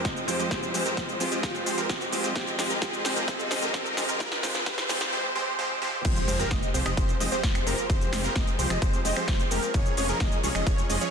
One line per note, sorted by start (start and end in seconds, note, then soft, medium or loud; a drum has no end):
0.00 2.32 F2 medium
0.00 2.32 F3 medium
0.00 0.25 G#3 medium
0.00 2.32 G#3 medium
0.00 0.25 C4 medium
0.00 0.25 F4 medium
0.00 0.26 G4 medium
0.00 0.49 G4 medium
0.00 2.32 C5 medium
0.00 riser medium
0.05 0.23 F3 medium
0.05 kick loud
0.05 snare medium
0.05 closed hi-hat soft
0.05 shaker soft
0.17 closed hi-hat soft
0.17 shaker soft
0.27 0.37 F3 medium
0.27 0.49 G#3 medium
0.27 0.37 G#3 medium
0.27 0.49 C4 medium
0.27 0.37 C4 medium
0.27 0.49 F4 medium
0.27 0.37 G4 medium
0.27 0.50 G4 loud
0.27 0.37 C5 medium
0.27 open hi-hat loud
0.27 shaker medium
0.39 0.48 F3 medium
0.39 0.48 G#3 medium
0.39 0.48 C4 medium
0.39 0.48 G4 medium
0.39 0.48 D#5 medium
0.39 closed hi-hat soft
0.39 shaker soft
0.50 0.71 F3 medium
0.50 1.17 G#3 medium
0.50 0.71 G#3 medium
0.50 1.17 C4 medium
0.50 0.71 C4 medium
0.50 1.18 F4 medium
0.50 0.71 G4 medium
0.50 1.18 G4 medium
0.50 0.71 C5 loud
0.50 kick loud
0.50 snare medium
0.50 closed hi-hat soft
0.50 shaker soft
0.63 closed hi-hat soft
0.63 shaker soft
0.74 0.83 F3 medium
0.74 0.83 G#3 medium
0.74 0.83 C4 medium
0.74 0.83 G4 medium
0.74 0.83 C5 medium
0.74 open hi-hat loud
0.74 shaker medium
0.86 0.94 F3 medium
0.86 0.94 G#3 medium
0.86 0.94 C4 medium
0.86 0.95 G4 medium
0.86 0.95 A#4 medium
0.86 closed hi-hat soft
0.86 shaker soft
0.97 1.15 F3 medium
0.97 1.15 G#3 medium
0.97 1.15 C4 medium
0.97 1.15 G4 medium
0.97 1.15 D#5 loud
0.97 kick loud
0.97 snare medium
0.97 closed hi-hat medium
0.97 shaker soft
1.09 closed hi-hat soft
1.09 shaker soft
1.19 1.29 F3 medium
1.19 1.41 G#3 medium
1.19 1.29 G#3 medium
1.19 1.41 C4 medium
1.19 1.29 C4 medium
1.19 1.42 F4 medium
1.19 1.29 G4 medium
1.19 1.42 G4 medium
1.19 1.29 C5 medium
1.19 open hi-hat loud
1.19 shaker medium
1.32 1.41 F3 medium
1.32 1.41 G#3 medium
1.32 1.41 C4 medium
1.32 1.41 G4 medium
1.32 1.41 D#5 medium
1.32 closed hi-hat medium
1.32 shaker soft
1.42 1.64 F3 medium
1.42 2.09 G#3 medium
1.42 1.64 G#3 medium
1.42 2.10 C4 medium
1.42 1.64 C4 medium
1.42 2.10 F4 medium
1.42 1.64 G4 medium
1.42 2.10 G4 medium
1.42 1.64 C5 loud
1.42 kick loud
1.42 snare medium
1.42 closed hi-hat soft
1.42 shaker soft
1.55 closed hi-hat soft
1.55 shaker soft
1.66 1.75 F3 medium
1.66 1.75 G#3 medium
1.66 1.75 C4 medium
1.66 1.75 G4 medium
1.66 1.75 C5 loud
1.66 open hi-hat loud
1.66 shaker medium
1.78 1.87 F3 medium
1.78 1.87 G#3 medium
1.78 1.87 C4 medium
1.78 1.87 G4 medium
1.78 1.87 A#4 medium
1.78 closed hi-hat medium
1.78 shaker soft
1.89 2.07 F3 medium
1.89 2.07 G#3 medium
1.89 2.07 C4 medium
1.89 2.07 G4 medium
1.89 2.07 D#5 loud
1.89 kick loud
1.89 snare medium
1.89 closed hi-hat medium
1.89 shaker soft
2.01 closed hi-hat soft
2.01 shaker soft
2.11 2.21 F3 medium
2.11 2.33 G#3 medium
2.11 2.21 G#3 medium
2.11 2.34 C4 medium
2.11 2.21 C4 medium
2.11 2.34 F4 medium
2.11 2.21 G4 medium
2.11 2.35 G4 loud
2.11 2.21 C5 medium
2.11 open hi-hat loud
2.11 shaker medium
2.24 2.33 F3 medium
2.24 2.33 G#3 medium
2.24 2.33 C4 medium
2.24 2.33 G4 medium
2.24 2.33 D#5 medium
2.24 closed hi-hat medium
2.24 shaker soft
2.35 5.10 G#2 medium
2.35 5.10 D#3 medium
2.35 2.56 F3 medium
2.35 2.79 G#3 medium
2.35 2.56 G#3 medium
2.35 2.80 C4 medium
2.35 2.56 C4 medium
2.35 5.10 C4 medium
2.35 2.80 F4 medium
2.35 2.56 G4 medium
2.35 2.81 G4 medium
2.35 2.56 C5 loud
2.35 5.10 D#5 medium
2.35 kick loud
2.35 snare medium
2.35 closed hi-hat medium
2.35 shaker soft
2.47 closed hi-hat soft
2.47 shaker soft
2.59 2.68 F3 medium
2.59 2.67 G#3 medium
2.59 2.68 C4 medium
2.59 2.67 G4 medium
2.59 2.67 C5 loud
2.59 snare medium
2.59 open hi-hat loud
2.59 shaker medium
2.70 2.79 F3 medium
2.70 2.79 G#3 medium
2.70 2.79 C4 medium
2.70 2.79 G4 medium
2.70 2.79 A#4 loud
2.70 closed hi-hat medium
2.70 shaker soft
2.81 3.02 F3 medium
2.81 3.26 G#3 medium
2.81 3.02 G#3 medium
2.81 3.26 C4 medium
2.81 3.27 F4 medium
2.81 3.02 G4 medium
2.81 3.27 G4 loud
2.81 3.02 C5 loud
2.81 kick loud
2.81 snare medium
2.81 closed hi-hat medium
2.81 shaker soft
2.93 closed hi-hat soft
2.93 shaker soft
3.05 3.14 F3 medium
3.05 3.14 G#3 medium
3.05 3.14 C4 medium
3.05 3.14 G4 medium
3.05 3.14 C5 loud
3.05 snare medium
3.05 open hi-hat loud
3.05 shaker medium
3.16 3.25 F3 medium
3.16 3.25 G#3 medium
3.16 3.25 C4 medium
3.16 3.25 G4 medium
3.16 3.25 A#4 medium
3.16 closed hi-hat medium
3.16 shaker soft
3.27 3.72 G#3 medium
3.27 3.48 C4 medium
3.27 3.72 C4 medium
3.27 3.73 F4 medium
3.27 3.48 G4 medium
3.27 3.73 G4 loud
3.27 kick loud
3.27 snare medium
3.27 closed hi-hat medium
3.27 shaker soft
3.39 closed hi-hat soft
3.39 shaker soft
3.51 3.60 F3 loud
3.51 3.60 G#3 medium
3.51 3.60 C4 medium
3.51 3.60 G4 medium
3.51 3.60 C5 loud
3.51 snare medium
3.51 open hi-hat loud
3.51 shaker medium
3.62 3.71 F3 medium
3.62 3.71 G#3 medium
3.62 3.71 C4 medium
3.62 3.71 G4 medium
3.62 3.71 A#4 loud
3.62 closed hi-hat medium
3.62 shaker soft
3.73 4.18 G#3 medium
3.73 4.18 C4 medium
3.73 3.94 C4 medium
3.73 4.19 F4 medium
3.73 3.94 G4 medium
3.73 4.19 G4 medium
3.73 kick loud
3.73 snare medium
3.73 closed hi-hat medium
3.73 shaker soft
3.86 closed hi-hat soft
3.86 shaker soft
3.97 4.06 F3 medium
3.97 4.06 G#3 medium
3.97 4.06 C4 medium
3.97 4.06 G4 medium
3.97 4.06 C5 loud
3.97 snare medium
3.97 open hi-hat loud
3.97 shaker medium
4.09 4.18 F3 medium
4.09 4.18 G#3 medium
4.09 4.18 C4 medium
4.09 4.18 G4 medium
4.09 4.18 A#4 loud
4.09 closed hi-hat medium
4.09 shaker soft
4.19 4.41 G#3 medium
4.19 4.41 C4 medium
4.19 4.42 F4 medium
4.19 4.42 G4 loud
4.19 kick loud
4.19 snare medium
4.19 closed hi-hat medium
4.19 shaker soft
4.32 snare medium
4.32 closed hi-hat soft
4.32 shaker soft
4.42 4.64 F3 loud
4.42 4.64 G#3 medium
4.42 4.65 C4 medium
4.42 4.64 C4 medium
4.42 4.65 F4 medium
4.42 4.64 G4 medium
4.42 4.65 G4 loud
4.42 4.64 C5 loud
4.42 snare loud
4.42 open hi-hat loud
4.42 shaker medium
4.55 snare medium
4.55 closed hi-hat medium
4.55 shaker soft
4.65 4.87 F3 medium
4.65 4.87 G#3 medium
4.65 4.88 C4 medium
4.65 4.87 C4 medium
4.65 4.88 F4 medium
4.65 4.87 G4 medium
4.65 4.88 G4 loud
4.65 4.87 C5 loud
4.65 kick loud
4.65 snare loud
4.65 closed hi-hat medium
4.65 shaker soft
4.78 snare medium
4.78 closed hi-hat soft
4.78 shaker soft
4.88 5.10 F3 loud
4.88 5.10 G#3 medium
4.88 5.11 C4 medium
4.88 5.10 C4 medium
4.88 5.11 F4 medium
4.88 5.10 G4 medium
4.88 5.12 G4 loud
4.88 5.10 C5 loud
4.88 snare loud
4.88 open hi-hat loud
4.88 shaker medium
5.01 snare medium
5.01 closed hi-hat medium
5.01 shaker soft
5.12 5.33 F3 loud
5.12 5.33 G#3 medium
5.12 5.33 C4 medium
5.12 5.33 G4 medium
5.12 5.33 C5 loud
5.35 5.56 F3 loud
5.35 5.56 G#3 medium
5.35 5.56 C4 medium
5.35 5.56 G4 medium
5.35 5.56 C5 loud
5.59 5.79 F3 loud
5.59 5.79 G#3 medium
5.59 5.79 C4 medium
5.59 5.79 G4 medium
5.59 5.79 C5 loud
5.82 6.02 F3 loud
5.82 6.02 G#3 medium
5.82 6.02 C4 medium
5.82 6.02 G4 medium
5.82 6.02 C5 loud
6.05 6.20 F1 loud
6.05 6.25 F3 medium
6.05 9.71 F3 medium
6.05 6.25 G#3 medium
6.05 6.25 C4 medium
6.05 11.11 F4 medium
6.05 6.25 G4 medium
6.05 9.71 G4 medium
6.05 11.11 G#4 medium
6.05 6.25 C5 loud
6.05 9.71 C5 medium
6.05 kick loud
6.05 closed hi-hat medium
6.05 crash loud
6.05 impact medium
6.05 shaker soft
6.16 closed hi-hat soft
6.16 shaker soft
6.28 6.43 F1 medium
6.28 6.37 F3 loud
6.28 6.37 G#3 medium
6.28 6.37 C4 medium
6.28 6.37 G4 medium
6.28 6.37 C5 loud
6.28 open hi-hat loud
6.28 shaker medium
6.39 6.48 F3 medium
6.39 6.48 G#3 medium
6.39 6.48 C4 medium
6.39 6.48 G4 medium
6.39 6.48 A#4 loud
6.39 closed hi-hat soft
6.39 shaker soft
6.51 6.59 F1 medium
6.51 6.69 D#5 loud
6.51 kick loud
6.51 snare loud
6.51 closed hi-hat medium
6.51 shaker soft
6.63 closed hi-hat soft
6.63 shaker soft
6.74 6.82 C2 medium
6.74 6.83 F3 medium
6.74 6.83 G#3 medium
6.74 6.83 C4 medium
6.74 6.83 G4 medium
6.74 6.83 C5 medium
6.74 open hi-hat loud
6.74 shaker medium
6.86 6.93 F1 medium
6.86 6.94 F3 medium
6.86 6.94 G#3 medium
6.86 6.94 C4 medium
6.86 6.94 G4 medium
6.86 6.95 D#5 medium
6.86 finger snap medium
6.86 closed hi-hat soft
6.86 shaker soft
6.97 7.13 F1 medium
6.97 7.15 F3 loud
6.97 7.15 G#3 medium
6.97 7.15 C4 medium
6.97 7.15 G4 medium
6.97 7.15 C5 loud
6.97 kick loud
6.97 closed hi-hat medium
6.97 shaker soft
7.09 closed hi-hat soft
7.09 shaker soft
7.20 7.28 F1 medium
7.20 7.30 F3 medium
7.20 7.30 G#3 medium
7.20 7.30 C4 medium
7.20 7.30 G4 medium
7.20 7.30 D#5 medium
7.20 open hi-hat loud
7.20 shaker medium
7.32 7.42 F3 medium
7.32 7.42 G#3 medium
7.32 7.42 C4 medium
7.32 7.42 G4 medium
7.32 7.42 C5 medium
7.32 closed hi-hat soft
7.32 shaker soft
7.43 7.59 F1 loud
7.43 7.64 F3 medium
7.43 7.64 C5 medium
7.43 kick loud
7.43 snare loud
7.43 closed hi-hat medium
7.43 shaker soft
7.55 finger snap medium
7.55 closed hi-hat soft
7.55 shaker soft
7.66 7.74 F1 medium
7.66 7.86 F3 medium
7.66 7.86 G#3 medium
7.66 7.86 C4 medium
7.66 7.86 G4 medium
7.66 7.86 A#4 loud
7.66 open hi-hat loud
7.66 shaker medium
7.78 closed hi-hat soft
7.78 shaker soft
7.90 8.05 F1 loud
7.90 8.10 F3 medium
7.90 8.10 G#3 medium
7.90 8.10 C4 medium
7.90 8.10 G4 medium
7.90 8.10 C5 loud
7.90 kick loud
7.90 closed hi-hat medium
7.90 shaker soft
8.01 closed hi-hat soft
8.01 shaker soft
8.13 8.28 F1 medium
8.13 8.21 F3 medium
8.13 8.21 G#3 medium
8.13 8.21 C4 medium
8.13 8.21 G4 medium
8.13 8.21 C5 loud
8.13 finger snap medium
8.13 snare medium
8.13 open hi-hat loud
8.13 shaker medium
8.24 8.33 F3 medium
8.24 8.33 G#3 medium
8.24 8.33 C4 medium
8.24 8.33 G4 medium
8.24 8.33 A#4 loud
8.24 closed hi-hat soft
8.24 shaker soft
8.36 8.44 F1 medium
8.36 8.54 F3 medium
8.36 8.54 G#3 medium
8.36 8.54 D#5 loud
8.36 kick loud
8.36 snare loud
8.36 closed hi-hat medium
8.36 shaker soft
8.47 closed hi-hat soft
8.47 shaker soft
8.59 8.67 C2 loud
8.59 8.68 F3 medium
8.59 8.68 G#3 medium
8.59 8.68 C4 medium
8.59 8.68 G4 medium
8.59 8.68 C5 medium
8.59 open hi-hat loud
8.59 shaker medium
8.70 8.78 F1 medium
8.70 8.79 F3 medium
8.70 8.79 G#3 medium
8.70 8.79 C4 medium
8.70 8.79 G4 medium
8.70 8.79 D#5 medium
8.70 finger snap medium
8.70 closed hi-hat soft
8.70 shaker soft
8.82 8.97 F1 loud
8.82 9.00 F3 loud
8.82 9.00 G#3 medium
8.82 9.00 C4 medium
8.82 9.00 G4 medium
8.82 9.00 C5 loud
8.82 kick loud
8.82 closed hi-hat medium
8.82 shaker soft
8.93 closed hi-hat soft
8.93 shaker soft
9.05 9.13 F1 medium
9.05 9.15 F3 medium
9.05 9.15 G#3 medium
9.05 9.15 C4 medium
9.05 9.15 G4 medium
9.05 9.15 D#5 medium
9.05 open hi-hat loud
9.05 shaker medium
9.16 9.26 F3 medium
9.16 9.26 G#3 medium
9.16 9.26 C4 medium
9.16 9.26 G4 medium
9.16 9.26 C5 medium
9.16 finger snap medium
9.16 closed hi-hat soft
9.16 shaker soft
9.28 9.44 F1 loud
9.28 9.48 F3 medium
9.28 9.48 G#3 medium
9.28 9.48 C4 medium
9.28 9.48 G4 medium
9.28 9.48 C5 medium
9.28 kick loud
9.28 snare loud
9.28 closed hi-hat medium
9.28 shaker soft
9.40 closed hi-hat soft
9.40 shaker soft
9.51 9.59 F1 medium
9.51 9.71 F3 medium
9.51 9.71 G#3 medium
9.51 9.71 C4 medium
9.51 9.71 G4 medium
9.51 9.71 A#4 medium
9.51 9.71 A#4 loud
9.51 open hi-hat loud
9.51 shaker medium
9.63 closed hi-hat soft
9.63 shaker soft
9.74 9.90 F1 loud
9.74 9.95 F3 loud
9.74 9.95 G#3 medium
9.74 11.11 C#4 medium
9.74 9.95 C#4 medium
9.74 9.95 G#4 medium
9.74 9.95 C#5 loud
9.74 kick loud
9.74 closed hi-hat medium
9.74 shaker soft
9.86 closed hi-hat soft
9.86 shaker soft
9.97 10.13 F1 medium
9.97 10.06 F3 medium
9.97 10.06 G#3 medium
9.97 10.06 C#4 medium
9.97 10.06 G#4 medium
9.97 10.06 C#5 loud
9.97 open hi-hat loud
9.97 shaker medium
10.09 10.18 F3 medium
10.09 10.18 G#3 medium
10.09 10.18 C#4 medium
10.09 10.18 G#4 medium
10.09 10.18 A#4 loud
10.09 closed hi-hat soft
10.09 shaker soft
10.20 10.28 F1 medium
10.20 10.38 D#5 loud
10.20 kick loud
10.20 snare loud
10.20 closed hi-hat medium
10.20 shaker soft
10.32 closed hi-hat soft
10.32 shaker soft
10.43 10.51 C2 loud
10.43 10.52 F3 medium
10.43 10.52 G#3 medium
10.43 10.52 C#4 medium
10.43 10.52 G#4 medium
10.43 10.52 C#5 medium
10.43 open hi-hat loud
10.43 shaker medium
10.55 10.63 F1 medium
10.55 10.64 F3 medium
10.55 10.64 G#3 medium
10.55 10.64 C#4 medium
10.55 10.64 G#4 medium
10.55 10.64 D#5 medium
10.55 finger snap medium
10.55 closed hi-hat soft
10.55 shaker soft
10.66 10.82 F1 loud
10.66 10.84 F3 loud
10.66 10.84 C#5 loud
10.66 kick loud
10.66 closed hi-hat medium
10.66 shaker soft
10.78 closed hi-hat soft
10.78 shaker soft
10.90 10.97 F1 medium
10.90 10.99 F3 medium
10.90 10.99 G#3 medium
10.90 11.00 C#4 medium
10.90 10.99 G#4 medium
10.90 10.99 D#5 medium
10.90 open hi-hat loud
10.90 shaker medium
11.01 11.11 F3 medium
11.01 11.11 G#3 medium
11.01 11.11 C#4 medium
11.01 11.11 G#4 medium
11.01 11.11 C#5 medium
11.01 closed hi-hat soft
11.01 shaker soft